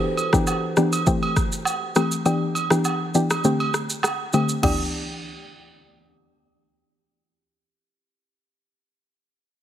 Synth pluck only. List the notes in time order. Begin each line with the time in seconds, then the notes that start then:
0.33 E3 B3 D4 G4
0.77 E3 B3 D4 G4
1.07 E3 A3 C4 G4
1.96 E3 A3 C4 G4
2.25 E3 B3 D4 G4
2.71 E3 B3 D4 G4
3.15 E3 B3 D4 G4
3.44 D3 A3 C4 G4
4.33 D3 A3 C4 G4
4.63 E3 B3 D4 G4